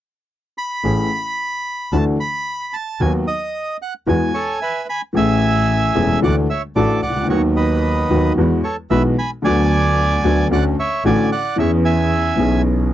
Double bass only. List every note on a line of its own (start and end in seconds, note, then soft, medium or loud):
0.84 1.07 A1 medium
1.92 2.15 D2 medium
3.00 3.23 D#2 medium
4.07 4.30 E2 medium
5.15 5.92 A1 medium
5.96 6.19 E1 medium
6.23 6.45 D2 medium
6.76 6.99 A1 medium
7.03 7.29 C#2 medium
7.30 8.06 D#2 medium
8.10 8.33 D#2 medium
8.37 8.59 E2 medium
8.91 9.13 B1 medium
9.44 10.20 D2 medium
10.24 10.47 D2 medium
10.51 10.74 D2 medium
11.04 11.27 A1 medium
11.58 12.35 E2 medium
12.38 12.93 B1 medium